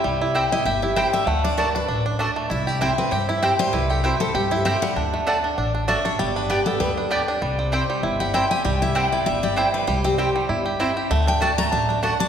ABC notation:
X:1
M:4/4
L:1/8
Q:"Swing" 1/4=195
K:Clyd
V:1 name="Steel-string acoustic guitar"
z3 _e =e G c e | f d _B =B2 z3 | e d c B c E G c | B A F A G c e f- |
f4 z2 e ^c | d B G A B z3 | z4 z f g _a | g e f d e d c B |
c G z6 | f g a _b a d f a |]
V:2 name="Mandolin"
z2 [CEcg] z3 [CEcg] z | z2 [A,Fda] z3 [A,Fda] z | z2 [CEcg] z3 [CEcg] z | z2 [CEcg] z3 [CEcg] z |
z2 [A,Fda] z3 [A,Fda] z | z2 [B,Gdg] z3 [B,Gdg] z | z2 [CEcg] z3 [CEcg] z | z2 [CEcg] z3 [CEcg] z |
z2 [CEcg] z3 [CEcg] z | z2 [A,Fda] z3 [A,Fda] z |]
V:3 name="Five-string banjo"
[G,EG] E G E G E G G, | A, D D D D D D A, | E G E C G E G G, | E G E C G E G G, |
D A, D D D D D D | G, D G, B, G, D G D | G, C G G, E G E G | G, E G, E G, G E G, |
G, C G G, E G E G | A, D D A, D D D D |]
V:4 name="Upright bass" clef=bass
C,,4 G,,,4 | D,,4 A,,,4 | C,,4 G,,4 | C,,4 G,,4 |
D,,4 A,,,4 | G,,,4 D,,4 | C,,4 G,,,4 | C,,4 G,,,4 |
C,,4 G,,,4 | D,,4 A,,,4 |]